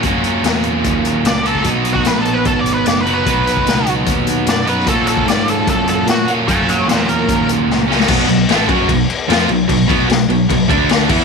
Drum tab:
CC |----------------|----------------|----------------|----------------|
HH |x-x-x-x-x-x-x-x-|x-x-x-x-x-x-x-x-|x-x-x-x-x-x-x-x-|x-x-x-x-x-x-x-x-|
SD |----o-------o---|----o-------o---|----o-------o--o|----o-------o---|
BD |o-------o------o|o--o----o-------|o--o----o-------|o--o----o-------|

CC |----------------|x-x-x-x-x-x-x-x-|x-x-x-x-x-x-x-x-|
HH |x-x-x-x-x-x-----|----------------|----------------|
SD |----o-------o-oo|-o--o-------o---|----o-------o---|
BD |o-------o-------|o-----o-o-------|o-o-----o-o---o-|